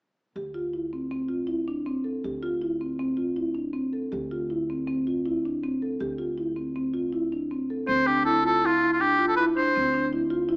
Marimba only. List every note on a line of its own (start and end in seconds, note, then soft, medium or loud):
0.36 0.49 G4 medium
0.54 0.68 F4 soft
0.74 0.87 E4 soft
0.93 1.06 C4 soft
1.11 1.24 C4 medium
1.29 1.42 F4 soft
1.47 1.61 E4 medium
1.68 1.81 D4 soft
1.86 2.00 C4 medium
2.04 2.18 A4 soft
2.24 2.37 G4 medium
2.43 2.56 F4 medium
2.62 2.75 E4 soft
2.81 2.94 C4 soft
2.99 3.12 C4 medium
3.17 3.31 F4 soft
3.36 3.50 E4 medium
3.55 3.68 D4 soft
3.73 3.87 C4 medium
3.93 4.06 A4 soft
4.12 4.25 G4 medium
4.31 4.44 F4 soft
4.50 4.63 E4 medium
4.70 4.83 C4 medium
4.87 5.01 C4 medium
5.07 5.20 F4 soft
5.26 5.39 E4 medium
5.45 5.58 D4 soft
5.64 5.76 C4 medium
5.82 5.95 A4 soft
6.01 6.14 G4 medium
6.18 6.32 F4 soft
6.38 6.51 E4 soft
6.56 6.70 C4 soft
6.76 6.89 C4 medium
6.94 7.07 F4 medium
7.13 7.26 E4 medium
7.32 7.45 D4 medium
7.51 7.64 C4 medium
7.70 7.83 A4 soft
7.88 8.01 C4 medium
8.06 8.20 D4 medium
8.24 8.38 E4 medium
8.43 8.56 F4 medium
8.62 8.76 E4 medium
8.81 8.95 E4 medium
9.00 9.13 D4 medium
9.19 9.32 F4 medium
9.38 9.51 E4 medium
9.57 9.70 D4 medium
9.75 9.88 C4 medium
9.94 10.07 D4 medium
10.13 10.26 E4 medium
10.30 10.44 F4 medium
10.49 10.57 E4 medium